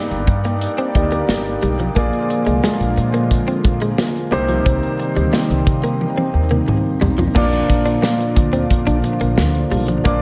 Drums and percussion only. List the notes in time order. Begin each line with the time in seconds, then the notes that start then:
0.11 closed hi-hat
0.27 kick, closed hi-hat
0.44 closed hi-hat
0.61 closed hi-hat
0.78 closed hi-hat
0.95 kick, closed hi-hat
1.12 closed hi-hat
1.29 snare
1.46 closed hi-hat
1.62 closed hi-hat
1.79 closed hi-hat
1.96 kick, closed hi-hat
2.13 closed hi-hat
2.30 closed hi-hat
2.47 closed hi-hat
2.64 snare
2.81 closed hi-hat
2.97 closed hi-hat
3.14 closed hi-hat
3.31 kick, closed hi-hat
3.47 closed hi-hat
3.64 kick, closed hi-hat
3.81 closed hi-hat
3.98 snare
4.16 closed hi-hat
4.32 closed hi-hat
4.49 closed hi-hat
4.66 kick, closed hi-hat
4.83 closed hi-hat
5.00 closed hi-hat
5.17 closed hi-hat
5.33 snare
5.51 closed hi-hat
5.67 kick, closed hi-hat
5.84 closed hi-hat
6.01 high tom
6.18 high tom
6.51 mid tom
6.68 mid tom
7.02 floor tom
7.19 floor tom
7.36 kick, crash
7.53 closed hi-hat
7.70 kick, closed hi-hat
7.87 closed hi-hat
8.03 snare, tambourine
8.20 closed hi-hat
8.37 kick, closed hi-hat
8.54 closed hi-hat
8.71 kick, closed hi-hat
8.87 closed hi-hat
9.04 closed hi-hat
9.21 closed hi-hat
9.38 snare, tambourine
9.55 closed hi-hat
9.72 open hi-hat
9.88 closed hi-hat
10.05 kick, closed hi-hat